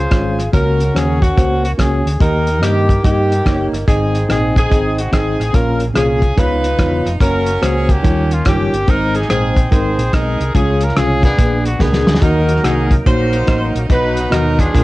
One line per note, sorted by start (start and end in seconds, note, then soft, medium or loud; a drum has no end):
0.00 0.49 F4 medium
0.00 0.49 G#4 medium
0.00 0.39 C5 medium
0.11 0.47 G#1 medium
0.11 0.39 G#3 medium
0.11 0.40 C#4 medium
0.11 0.40 F4 medium
0.11 0.40 C#5 medium
0.11 kick medium
0.11 cross-stick medium
0.11 closed hi-hat medium
0.39 cross-stick soft
0.39 closed hi-hat medium
0.53 0.89 C#2 loud
0.53 1.18 C#3 medium
0.53 0.81 A#3 medium
0.53 1.20 C#4 medium
0.53 0.81 C#4 medium
0.53 1.21 F#4 medium
0.53 0.82 F#4 medium
0.53 0.92 A#4 medium
0.53 0.82 C#5 medium
0.53 kick loud
0.53 closed hi-hat medium
0.80 closed hi-hat medium
0.94 1.31 D#2 medium
0.94 1.23 A#3 medium
0.94 1.23 C#4 medium
0.94 1.23 F#4 medium
0.94 1.22 G#4 medium
0.94 1.24 C#5 medium
0.94 cross-stick medium
0.94 closed hi-hat medium
1.21 2.01 A#3 medium
1.21 1.77 C#4 medium
1.21 1.64 F#4 medium
1.21 kick medium
1.21 closed hi-hat medium
1.37 1.73 C#2 medium
1.37 1.65 A#3 medium
1.37 1.65 C#4 medium
1.37 1.65 F#4 medium
1.37 1.66 C5 medium
1.37 kick loud
1.37 closed hi-hat medium
1.65 1.71 F#4 medium
1.65 closed hi-hat medium
1.78 2.02 C#2 medium
1.78 2.07 A#3 medium
1.78 2.17 C#4 medium
1.78 2.07 C#4 medium
1.78 2.07 F#4 medium
1.78 2.18 G#4 medium
1.78 2.07 C#5 medium
1.78 kick medium
1.78 cross-stick medium
1.78 closed hi-hat medium
2.06 2.18 D2 medium
2.06 closed hi-hat medium
2.20 2.62 D#2 medium
2.20 2.85 D#3 medium
2.20 2.49 A#3 medium
2.20 2.61 D#4 medium
2.20 2.49 D#4 medium
2.20 2.61 G4 medium
2.20 2.49 G4 medium
2.20 2.62 A#4 medium
2.20 2.49 D#5 medium
2.20 kick loud
2.20 closed hi-hat medium
2.47 closed hi-hat medium
2.62 2.98 G2 medium
2.62 2.90 A#3 medium
2.62 3.03 A#3 medium
2.62 2.90 D#4 medium
2.62 3.03 D#4 medium
2.62 2.91 G4 medium
2.62 3.01 G4 medium
2.62 2.91 D#5 medium
2.62 cross-stick medium
2.62 closed hi-hat medium
2.89 kick medium
2.89 closed hi-hat medium
3.03 3.40 G2 medium
3.03 3.32 A#3 medium
3.03 3.83 A#3 medium
3.03 3.32 D#4 medium
3.03 3.83 D#4 medium
3.03 3.32 G4 medium
3.03 3.69 G4 medium
3.03 3.32 D#5 medium
3.03 kick loud
3.03 closed hi-hat medium
3.32 closed hi-hat medium
3.46 3.69 F#1 medium
3.46 3.74 A#3 medium
3.46 3.74 D#4 medium
3.46 3.74 G4 medium
3.46 3.75 C#5 medium
3.46 kick medium
3.46 cross-stick medium
3.46 closed hi-hat medium
3.72 3.85 G1 medium
3.72 cross-stick soft
3.72 closed hi-hat medium
3.87 4.23 G#1 medium
3.87 4.52 G#2 medium
3.87 4.16 C4 medium
3.87 4.56 C4 medium
3.87 4.16 D#4 medium
3.87 4.56 D#4 medium
3.87 4.16 G#4 medium
3.87 4.27 G#4 medium
3.87 4.16 D#5 medium
3.87 kick loud
3.87 closed hi-hat medium
4.15 closed hi-hat medium
4.28 4.64 A#1 medium
4.28 4.57 C4 medium
4.28 4.57 D#4 medium
4.28 4.57 G#4 medium
4.28 4.55 G#4 medium
4.28 4.58 D#5 medium
4.28 cross-stick medium
4.28 closed hi-hat medium
4.56 5.11 C4 medium
4.56 5.11 D#4 medium
4.56 4.96 G#4 medium
4.56 kick medium
4.56 closed hi-hat medium
4.70 5.06 G#1 medium
4.70 4.99 C4 medium
4.70 4.99 D#4 medium
4.70 4.99 G#4 medium
4.70 4.99 D#5 medium
4.70 kick medium
4.70 closed hi-hat medium
4.98 5.13 F#4 medium
4.98 closed hi-hat medium
5.12 5.35 G#1 medium
5.12 5.40 C4 medium
5.12 5.51 C4 medium
5.12 5.41 D#4 medium
5.12 5.51 D#4 medium
5.12 5.41 G#4 medium
5.12 5.54 G#4 medium
5.12 5.41 D#5 medium
5.12 kick medium
5.12 cross-stick medium
5.12 closed hi-hat medium
5.39 5.52 A1 medium
5.39 cross-stick soft
5.39 closed hi-hat medium
5.53 5.90 A#1 medium
5.53 6.18 A#2 medium
5.53 5.82 A#3 medium
5.53 5.82 C#4 medium
5.53 5.83 C#4 medium
5.53 5.82 F4 medium
5.53 5.84 F4 medium
5.53 5.83 A#4 medium
5.53 5.82 C#5 medium
5.53 kick medium
5.53 closed hi-hat medium
5.80 closed hi-hat medium
5.94 6.31 C2 medium
5.94 6.23 A#3 medium
5.94 6.23 C#4 medium
5.94 6.35 C#4 medium
5.94 6.24 F4 medium
5.94 6.35 F4 medium
5.94 6.24 G#4 medium
5.94 6.38 G#4 medium
5.94 cross-stick medium
5.94 closed hi-hat medium
6.22 kick medium
6.22 closed hi-hat medium
6.37 6.73 C#2 medium
6.37 7.02 C#3 medium
6.37 6.65 B3 medium
6.37 6.65 D#4 medium
6.37 7.17 D#4 medium
6.37 6.66 F4 medium
6.37 7.17 F4 medium
6.37 7.06 B4 medium
6.37 6.66 C#5 medium
6.37 kick loud
6.37 closed hi-hat medium
6.64 closed hi-hat medium
6.78 7.02 E1 loud
6.78 7.07 B3 medium
6.78 7.07 D#4 medium
6.78 7.07 F4 medium
6.78 7.07 C#5 medium
6.78 kick medium
6.78 cross-stick medium
6.78 closed hi-hat medium
7.06 7.18 F1 medium
7.06 cross-stick soft
7.06 closed hi-hat medium
7.20 7.56 F#1 medium
7.20 7.49 A#3 medium
7.20 7.49 C#4 medium
7.20 7.89 C#4 medium
7.20 7.49 F#4 medium
7.20 8.00 F#4 medium
7.20 7.60 A#4 medium
7.20 7.49 C#5 medium
7.20 kick loud
7.20 closed hi-hat medium
7.46 closed hi-hat medium
7.61 7.98 C#2 medium
7.61 7.90 A#3 medium
7.61 7.90 C#4 medium
7.61 7.90 F#4 medium
7.61 7.90 G#4 medium
7.61 7.91 C5 medium
7.61 cross-stick medium
7.61 closed hi-hat medium
7.89 8.45 A#3 medium
7.89 8.45 C#4 medium
7.89 8.32 G4 medium
7.89 kick medium
7.89 closed hi-hat medium
8.03 8.40 D#2 medium
8.03 8.68 D#3 medium
8.03 8.32 G3 medium
8.03 8.32 D#4 medium
8.03 8.32 F4 medium
8.03 8.32 C#5 medium
8.03 kick loud
8.03 closed hi-hat medium
8.31 8.46 F4 medium
8.31 closed hi-hat medium
8.45 8.69 F#1 medium
8.45 8.74 G3 medium
8.45 8.85 A#3 medium
8.45 8.85 C#4 medium
8.45 8.74 D#4 medium
8.45 8.74 F4 medium
8.45 8.88 G4 medium
8.45 8.74 C#5 medium
8.45 kick medium
8.45 cross-stick loud
8.45 closed hi-hat medium
8.72 8.85 G1 medium
8.72 closed hi-hat medium
8.87 9.23 G#1 medium
8.87 9.52 G#2 medium
8.87 9.16 G#3 medium
8.87 9.16 C4 medium
8.87 9.16 D#4 medium
8.87 9.29 D#4 medium
8.87 9.15 A#4 medium
8.87 9.16 C5 medium
8.87 kick loud
8.87 closed hi-hat medium
9.15 9.29 G#4 medium
9.15 closed hi-hat medium
9.22 cross-stick soft
9.29 9.65 A#1 medium
9.29 9.57 G#3 medium
9.29 9.58 C4 medium
9.29 10.09 C4 medium
9.29 9.58 D#4 medium
9.29 9.70 D#4 medium
9.29 9.69 G#4 medium
9.29 9.58 C5 medium
9.29 cross-stick medium
9.29 closed hi-hat medium
9.56 kick medium
9.56 closed hi-hat medium
9.70 9.95 G#1 medium
9.70 9.99 G#3 medium
9.70 9.99 C4 medium
9.70 10.00 D#4 medium
9.70 10.12 D#4 medium
9.70 10.51 G#4 medium
9.70 10.00 A#4 medium
9.70 10.13 C5 medium
9.70 kick loud
9.70 closed hi-hat medium
9.98 10.11 A#1 medium
9.98 closed hi-hat medium
10.13 10.36 B1 medium
10.13 10.41 G#3 medium
10.13 10.42 C4 medium
10.13 10.52 D#4 medium
10.13 10.42 D#4 medium
10.13 10.55 A#4 medium
10.13 10.42 D#5 medium
10.13 kick medium
10.13 cross-stick loud
10.13 closed hi-hat medium
10.40 10.53 C2 medium
10.40 closed hi-hat medium
10.54 10.90 C#2 medium
10.54 11.20 C#3 medium
10.54 10.83 G#3 medium
10.54 10.83 C#4 medium
10.54 11.35 C#4 medium
10.54 11.35 F4 medium
10.54 10.84 F4 medium
10.54 10.82 G#4 medium
10.54 10.84 C#5 medium
10.54 kick medium
10.54 closed hi-hat medium
10.81 10.97 A#4 medium
10.81 closed hi-hat medium
10.89 cross-stick soft
10.96 11.32 C2 medium
10.96 11.25 G#3 medium
10.96 11.25 C#4 medium
10.96 11.25 F4 medium
10.96 11.22 G#4 medium
10.96 11.25 C#5 medium
10.96 cross-stick medium
10.96 closed hi-hat medium
11.23 11.79 B3 medium
11.23 11.79 D4 medium
11.23 11.63 G#4 medium
11.23 kick medium
11.23 closed hi-hat medium
11.37 11.74 A#1 medium
11.37 12.03 A#2 soft
11.37 11.66 A#3 medium
11.37 11.66 D4 medium
11.37 11.67 G#4 medium
11.37 11.67 B4 medium
11.37 kick loud
11.37 closed hi-hat medium
11.65 11.79 F#4 medium
11.65 closed hi-hat medium
11.79 12.03 C#2 medium
11.79 12.08 A#3 medium
11.79 12.19 B3 medium
11.79 12.08 D4 medium
11.79 12.19 D4 medium
11.79 12.08 G#4 medium
11.79 12.22 G#4 medium
11.79 12.09 A#4 medium
11.79 kick medium
11.79 snare soft
11.93 snare soft
12.06 12.19 D2 medium
12.06 snare medium
12.15 snare medium
12.21 12.58 D#2 loud
12.21 12.87 D#3 medium
12.21 13.87 F#3 medium
12.21 12.50 A#3 medium
12.21 13.87 A#3 medium
12.21 12.50 D#4 medium
12.21 12.64 D#4 medium
12.21 13.87 D#4 medium
12.21 12.51 F#4 medium
12.21 12.90 F#4 medium
12.21 12.64 A#4 medium
12.21 13.87 A#4 medium
12.21 12.51 D#5 medium
12.21 kick medium
12.21 closed hi-hat medium
12.49 closed hi-hat medium
12.57 cross-stick soft
12.63 12.99 C2 medium
12.63 12.92 A#3 medium
12.63 12.92 D#4 medium
12.63 12.95 D#4 medium
12.63 12.92 F#4 medium
12.63 12.94 G#4 loud
12.63 12.93 F#5 medium
12.63 cross-stick medium
12.63 closed hi-hat medium
12.91 kick medium
12.91 closed hi-hat medium
13.06 13.42 A#1 medium
13.06 13.34 A#3 medium
13.06 13.35 D#4 medium
13.06 13.86 D#4 medium
13.06 13.35 F#4 medium
13.06 13.86 F#4 medium
13.06 13.72 C5 medium
13.06 13.35 C#5 medium
13.06 kick loud
13.06 closed hi-hat medium
13.33 closed hi-hat medium
13.47 13.71 A1 medium
13.47 13.76 A#3 medium
13.47 13.76 D#4 medium
13.47 13.76 F#4 medium
13.47 13.76 D#5 medium
13.47 kick medium
13.47 cross-stick medium
13.47 closed hi-hat medium
13.75 13.88 A#1 medium
13.75 closed hi-hat medium
13.89 14.25 B1 medium
13.89 14.55 B2 medium
13.89 14.72 F#3 medium
13.89 14.18 B3 medium
13.89 14.72 B3 soft
13.89 14.18 D#4 medium
13.89 14.73 D#4 soft
13.89 14.70 D#4 medium
13.89 14.18 F#4 medium
13.89 14.71 F#4 medium
13.89 14.72 B4 medium
13.89 14.30 B4 medium
13.89 14.19 D#5 medium
13.89 kick loud
13.89 closed hi-hat medium
14.17 closed hi-hat medium
14.30 14.67 D#2 medium
14.30 14.59 B3 medium
14.30 14.60 D#4 medium
14.30 14.60 F#4 medium
14.30 14.60 A#4 medium
14.30 14.60 D#5 medium
14.30 cross-stick medium
14.30 closed hi-hat medium
14.59 14.84 D4 medium
14.59 14.84 F4 medium
14.59 14.84 G#4 medium
14.59 kick medium
14.59 closed hi-hat medium
14.73 14.84 A#1 loud
14.73 14.84 A#2 medium
14.73 14.84 F3 medium
14.73 14.84 G#3 medium
14.73 14.84 A#3 medium
14.73 14.84 D4 medium
14.73 14.84 F4 medium
14.73 14.84 G#4 medium
14.73 14.84 A#4 medium
14.73 kick loud
14.73 closed hi-hat medium